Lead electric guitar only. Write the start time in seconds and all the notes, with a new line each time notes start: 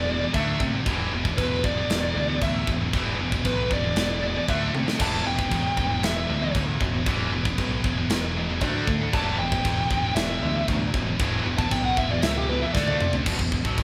Already playing: D5
0.34 E5
1.38 B4
1.65 D5
2.43 E5
3.46 B4
3.73 D5
4.50 E5
5.02 A5
5.27 G5
6.04 E5
9.14 A5
9.39 G5
10.16 E5
11.58 A5
11.71 G5
11.85 F#5
11.98 E5
12.11 D5
12.23 E5
12.38 G4
12.49 B4
12.62 E5
12.74 D5